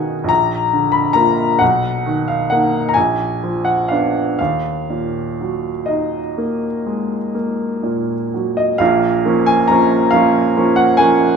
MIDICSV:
0, 0, Header, 1, 2, 480
1, 0, Start_track
1, 0, Key_signature, -6, "minor"
1, 0, Tempo, 869565
1, 164, Time_signature, 9, 3, 24, 8
1, 886, Tempo, 904977
1, 1846, Tempo, 981997
1, 4246, Tempo, 914634
1, 4726, Tempo, 870827
1, 5899, End_track
2, 0, Start_track
2, 0, Title_t, "Upright piano"
2, 0, Program_c, 0, 0
2, 0, Control_c, 0, 64, 127
2, 0, Note_on_c, 0, 35, 39
2, 0, Note_on_c, 0, 47, 37
2, 0, Note_on_c, 0, 51, 39
2, 0, Note_on_c, 0, 61, 32
2, 0, Note_on_c, 0, 63, 41
2, 0, Note_on_c, 0, 75, 57
2, 0, Note_on_c, 0, 78, 66
2, 0, Note_on_c, 0, 80, 59
2, 74, Note_off_c, 0, 47, 0
2, 131, Note_on_c, 0, 34, 49
2, 140, Note_off_c, 0, 35, 0
2, 158, Note_on_c, 0, 82, 71
2, 163, Note_off_c, 0, 80, 0
2, 168, Note_off_c, 0, 51, 0
2, 173, Control_c, 0, 64, 0
2, 175, Note_off_c, 0, 61, 0
2, 178, Note_off_c, 0, 63, 0
2, 178, Note_off_c, 0, 75, 0
2, 179, Note_off_c, 0, 78, 0
2, 271, Control_c, 0, 64, 127
2, 404, Note_on_c, 0, 50, 37
2, 507, Note_on_c, 0, 83, 66
2, 517, Note_off_c, 0, 82, 0
2, 625, Note_on_c, 0, 82, 69
2, 633, Note_off_c, 0, 83, 0
2, 636, Note_on_c, 0, 58, 37
2, 639, Note_on_c, 0, 65, 37
2, 788, Note_off_c, 0, 50, 0
2, 848, Note_off_c, 0, 34, 0
2, 862, Note_off_c, 0, 58, 0
2, 864, Note_off_c, 0, 65, 0
2, 876, Note_on_c, 0, 78, 66
2, 879, Note_off_c, 0, 82, 0
2, 887, Note_on_c, 0, 35, 47
2, 896, Control_c, 0, 64, 0
2, 991, Control_c, 0, 64, 127
2, 1128, Note_on_c, 0, 51, 37
2, 1241, Note_off_c, 0, 78, 0
2, 1242, Note_on_c, 0, 77, 55
2, 1360, Note_on_c, 0, 78, 64
2, 1363, Note_off_c, 0, 77, 0
2, 1371, Note_on_c, 0, 58, 35
2, 1376, Note_on_c, 0, 63, 37
2, 1508, Note_off_c, 0, 51, 0
2, 1564, Note_off_c, 0, 78, 0
2, 1566, Note_on_c, 0, 82, 49
2, 1582, Note_off_c, 0, 35, 0
2, 1585, Note_off_c, 0, 58, 0
2, 1587, Note_off_c, 0, 63, 0
2, 1592, Note_on_c, 0, 80, 60
2, 1603, Note_off_c, 0, 82, 0
2, 1606, Note_on_c, 0, 34, 44
2, 1611, Control_c, 0, 64, 0
2, 1695, Control_c, 0, 64, 127
2, 1856, Note_on_c, 0, 53, 32
2, 1957, Note_off_c, 0, 80, 0
2, 1959, Note_on_c, 0, 78, 55
2, 2076, Note_on_c, 0, 77, 59
2, 2079, Note_off_c, 0, 78, 0
2, 2088, Note_on_c, 0, 59, 30
2, 2090, Note_on_c, 0, 62, 34
2, 2230, Note_off_c, 0, 53, 0
2, 2304, Note_off_c, 0, 34, 0
2, 2306, Note_off_c, 0, 59, 0
2, 2307, Note_off_c, 0, 62, 0
2, 2314, Note_off_c, 0, 77, 0
2, 2321, Note_on_c, 0, 77, 59
2, 2330, Control_c, 0, 64, 0
2, 2331, Note_on_c, 0, 39, 35
2, 2412, Control_c, 0, 64, 127
2, 2572, Note_on_c, 0, 46, 28
2, 2820, Note_on_c, 0, 54, 28
2, 2956, Note_off_c, 0, 46, 0
2, 3040, Note_on_c, 0, 75, 43
2, 3048, Note_off_c, 0, 77, 0
2, 3052, Note_on_c, 0, 63, 31
2, 3199, Note_off_c, 0, 54, 0
2, 3295, Note_on_c, 0, 58, 30
2, 3433, Note_off_c, 0, 63, 0
2, 3529, Note_on_c, 0, 56, 25
2, 3673, Note_off_c, 0, 58, 0
2, 3765, Note_off_c, 0, 56, 0
2, 3767, Note_on_c, 0, 58, 30
2, 4005, Note_on_c, 0, 46, 27
2, 4150, Note_off_c, 0, 58, 0
2, 4242, Note_off_c, 0, 75, 0
2, 4255, Note_on_c, 0, 54, 30
2, 4374, Note_on_c, 0, 75, 48
2, 4401, Note_off_c, 0, 46, 0
2, 4479, Note_off_c, 0, 39, 0
2, 4486, Note_on_c, 0, 77, 78
2, 4493, Note_on_c, 0, 34, 53
2, 4494, Note_off_c, 0, 75, 0
2, 4499, Note_off_c, 0, 54, 0
2, 4499, Note_on_c, 0, 46, 55
2, 4503, Control_c, 0, 64, 0
2, 4604, Control_c, 0, 64, 127
2, 4719, Note_off_c, 0, 34, 0
2, 4722, Note_off_c, 0, 46, 0
2, 4734, Note_on_c, 0, 53, 38
2, 4735, Note_on_c, 0, 58, 41
2, 4739, Note_on_c, 0, 61, 42
2, 4844, Note_off_c, 0, 77, 0
2, 4849, Note_on_c, 0, 80, 73
2, 4951, Note_off_c, 0, 53, 0
2, 4952, Note_off_c, 0, 58, 0
2, 4954, Note_off_c, 0, 61, 0
2, 4967, Note_on_c, 0, 82, 66
2, 4970, Note_off_c, 0, 80, 0
2, 4981, Note_on_c, 0, 53, 42
2, 4985, Note_on_c, 0, 58, 38
2, 4985, Note_on_c, 0, 61, 46
2, 5194, Note_off_c, 0, 53, 0
2, 5197, Note_off_c, 0, 58, 0
2, 5197, Note_off_c, 0, 61, 0
2, 5203, Note_on_c, 0, 77, 80
2, 5209, Note_off_c, 0, 82, 0
2, 5218, Note_on_c, 0, 53, 44
2, 5220, Note_on_c, 0, 58, 42
2, 5221, Note_on_c, 0, 61, 46
2, 5429, Note_off_c, 0, 53, 0
2, 5430, Note_off_c, 0, 58, 0
2, 5431, Note_off_c, 0, 61, 0
2, 5459, Note_on_c, 0, 53, 43
2, 5461, Note_on_c, 0, 58, 43
2, 5461, Note_on_c, 0, 61, 47
2, 5561, Note_off_c, 0, 77, 0
2, 5564, Note_on_c, 0, 78, 68
2, 5668, Note_off_c, 0, 53, 0
2, 5668, Note_off_c, 0, 61, 0
2, 5669, Note_off_c, 0, 58, 0
2, 5680, Note_on_c, 0, 80, 81
2, 5683, Note_off_c, 0, 78, 0
2, 5692, Note_on_c, 0, 53, 41
2, 5695, Note_on_c, 0, 58, 42
2, 5698, Note_on_c, 0, 61, 47
2, 5899, Note_off_c, 0, 53, 0
2, 5899, Note_off_c, 0, 58, 0
2, 5899, Note_off_c, 0, 61, 0
2, 5899, Note_off_c, 0, 80, 0
2, 5899, End_track
0, 0, End_of_file